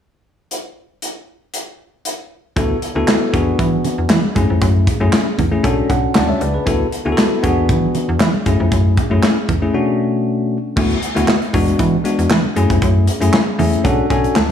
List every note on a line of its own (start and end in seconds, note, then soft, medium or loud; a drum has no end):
0.51 closed hi-hat medium
1.02 closed hi-hat medium
1.54 closed hi-hat medium
2.05 closed hi-hat medium
2.56 2.74 D2 loud
2.56 2.76 B3 medium
2.56 2.76 E4 medium
2.56 2.76 F#4 medium
2.56 2.76 A4 medium
2.56 kick loud
2.56 closed hi-hat medium
2.56 muted conga soft
2.82 closed hi-hat medium
2.95 3.04 D2 medium
2.95 3.32 B3 medium
2.95 3.33 E4 medium
2.95 3.32 F#4 medium
2.95 3.34 A4 medium
3.08 snare medium
3.08 clap medium
3.08 closed hi-hat medium
3.08 high conga medium
3.33 3.51 E2 medium
3.33 4.16 B3 medium
3.33 4.16 D4 medium
3.33 4.16 F#4 medium
3.33 4.16 G#4 medium
3.33 kick medium
3.33 closed hi-hat medium
3.59 3.77 E3 medium
3.59 kick loud
3.59 closed hi-hat medium
3.59 muted conga soft
3.85 closed hi-hat medium
3.85 low conga medium
3.98 4.07 E2 medium
4.10 4.20 E3 loud
4.10 snare loud
4.10 clap medium
4.10 closed hi-hat medium
4.10 high conga medium
4.24 high conga medium
4.35 4.46 F#2 loud
4.35 4.87 A3 medium
4.35 4.87 C#4 medium
4.35 4.87 E4 medium
4.35 4.87 G#4 medium
4.35 kick medium
4.35 closed hi-hat medium
4.35 high conga soft
4.50 4.58 F2 medium
4.61 4.89 F#2 loud
4.61 kick loud
4.61 closed hi-hat medium
4.61 muted conga soft
4.87 kick medium
4.87 closed hi-hat medium
5.00 5.09 F#2 medium
5.00 5.26 A3 medium
5.00 5.26 C#4 medium
5.00 5.27 E4 medium
5.00 5.27 G#4 medium
5.13 snare loud
5.13 clap medium
5.13 closed hi-hat medium
5.13 high conga medium
5.38 5.57 E2 medium
5.38 kick medium
5.38 closed hi-hat medium
5.38 low conga medium
5.51 5.64 A3 medium
5.51 5.62 C#4 medium
5.51 5.64 E4 medium
5.51 5.64 G#4 medium
5.64 5.82 B1 loud
5.64 6.46 C#4 medium
5.64 6.46 D4 medium
5.64 6.46 F#4 medium
5.64 5.90 A4 loud
5.64 kick loud
5.64 closed hi-hat medium
5.64 muted conga soft
5.89 6.08 B1 loud
5.89 6.13 F#5 medium
5.89 kick medium
5.89 closed hi-hat medium
6.15 6.33 D2 loud
6.15 6.28 D5 soft
6.15 6.28 F#5 medium
6.15 6.63 A5 medium
6.15 snare loud
6.15 clap medium
6.15 closed hi-hat medium
6.15 high conga medium
6.29 6.41 C#5 medium
6.29 6.40 E5 medium
6.29 high conga medium
6.41 6.59 C#2 medium
6.41 6.53 B4 medium
6.41 6.54 D5 medium
6.41 closed hi-hat medium
6.41 high conga soft
6.54 6.79 G#4 medium
6.54 6.79 B4 medium
6.66 6.85 D2 loud
6.66 6.86 B3 medium
6.66 6.86 E4 medium
6.66 6.86 F#4 medium
6.66 6.86 A4 medium
6.66 kick loud
6.66 closed hi-hat medium
6.66 muted conga soft
6.92 closed hi-hat medium
7.05 7.14 D2 medium
7.05 7.42 B3 medium
7.05 7.43 E4 medium
7.05 7.42 F#4 medium
7.05 7.12 G#4 medium
7.12 7.47 A4 medium
7.18 snare medium
7.18 clap medium
7.18 closed hi-hat medium
7.18 high conga medium
7.43 7.71 E2 medium
7.43 8.26 B3 medium
7.43 8.26 D4 medium
7.43 8.26 F#4 medium
7.43 8.26 G#4 medium
7.43 kick medium
7.43 closed hi-hat medium
7.43 muted conga soft
7.69 7.87 E3 loud
7.69 kick loud
7.69 closed hi-hat medium
7.69 muted conga soft
7.95 closed hi-hat medium
7.95 low conga medium
8.09 8.17 E2 medium
8.20 8.30 E3 loud
8.20 snare loud
8.20 clap medium
8.20 closed hi-hat medium
8.20 high conga medium
8.34 high conga medium
8.46 8.56 F#2 medium
8.46 8.97 A3 medium
8.46 8.97 C#4 medium
8.46 8.97 E4 medium
8.46 8.98 G#4 medium
8.46 kick medium
8.46 closed hi-hat medium
8.46 high conga soft
8.60 8.68 F2 medium
8.72 8.99 F#2 loud
8.72 kick loud
8.72 closed hi-hat medium
8.72 muted conga soft
8.97 kick medium
8.97 closed hi-hat medium
9.10 9.19 F#2 medium
9.10 9.37 A3 medium
9.10 9.37 C#4 medium
9.10 9.37 E4 medium
9.10 9.37 G#4 medium
9.23 snare medium
9.23 clap medium
9.23 closed hi-hat medium
9.23 high conga medium
9.49 9.67 E2 medium
9.49 kick medium
9.49 closed hi-hat medium
9.49 muted conga soft
9.49 low conga medium
9.62 9.73 A3 medium
9.62 9.73 C#4 medium
9.62 9.74 E4 medium
9.62 9.74 G#4 medium
9.74 10.56 B2 medium
9.74 10.57 A3 medium
9.74 10.57 C#4 medium
9.74 10.57 D4 medium
9.74 10.57 F#4 medium
10.76 10.95 D2 loud
10.76 10.96 A3 medium
10.76 10.96 B3 medium
10.76 10.97 E4 medium
10.76 10.97 F#4 medium
10.76 kick loud
10.76 crash medium
10.76 muted conga medium
10.90 closed hi-hat soft
11.02 closed hi-hat medium
11.15 11.25 D2 loud
11.15 11.35 A3 medium
11.15 11.35 B3 medium
11.15 11.35 E4 medium
11.15 11.35 F#4 medium
11.15 closed hi-hat medium
11.28 snare loud
11.28 clap medium
11.28 high conga medium
11.42 closed hi-hat soft
11.53 11.72 E2 loud
11.53 11.95 G#3 medium
11.53 11.95 B3 medium
11.53 11.95 D4 medium
11.53 11.96 F#4 loud
11.53 kick medium
11.53 open hi-hat medium
11.53 muted conga soft
11.68 closed hi-hat soft
11.79 11.97 E3 medium
11.79 kick loud
11.79 closed hi-hat medium
11.79 muted conga soft
12.04 12.31 G#3 medium
12.04 12.31 B3 medium
12.04 12.31 D4 medium
12.04 12.31 F#4 medium
12.04 closed hi-hat medium
12.18 12.27 E2 medium
12.18 closed hi-hat soft
12.30 12.40 E3 loud
12.30 snare loud
12.30 clap medium
12.30 high conga medium
12.44 high conga medium
12.56 12.66 F#2 loud
12.56 13.07 A3 medium
12.56 13.08 C#4 medium
12.56 13.08 E4 medium
12.56 13.08 G#4 medium
12.56 closed hi-hat medium
12.70 12.78 F2 medium
12.70 kick medium
12.70 closed hi-hat medium
12.82 13.09 F#2 loud
12.82 kick loud
12.82 closed hi-hat medium
12.82 muted conga soft
13.08 closed hi-hat medium
13.21 13.30 F#2 medium
13.21 13.40 A3 medium
13.21 13.40 C#4 medium
13.21 13.40 E4 medium
13.21 13.40 G#4 loud
13.21 closed hi-hat medium
13.33 snare loud
13.33 clap medium
13.33 high conga medium
13.59 13.77 E2 medium
13.59 13.84 A3 medium
13.59 13.83 C#4 medium
13.59 13.85 E4 medium
13.59 13.85 G#4 medium
13.59 13.83 E5 medium
13.59 open hi-hat medium
13.59 muted conga soft
13.59 low conga medium
13.73 closed hi-hat soft
13.84 14.03 B1 loud
13.84 14.05 C#4 medium
13.84 14.05 D4 medium
13.84 14.05 F#4 medium
13.84 14.06 A4 medium
13.84 14.08 F#5 medium
13.84 kick loud
13.84 closed hi-hat medium
13.84 muted conga soft
14.10 14.28 B1 loud
14.10 14.36 C#4 medium
14.10 14.36 D4 medium
14.10 14.36 F#4 medium
14.10 14.36 A4 medium
14.10 14.34 G#5 medium
14.10 kick medium
14.10 closed hi-hat medium
14.24 closed hi-hat soft
14.36 14.52 D2 loud
14.36 14.52 A5 medium
14.36 snare loud
14.36 clap medium
14.36 high conga medium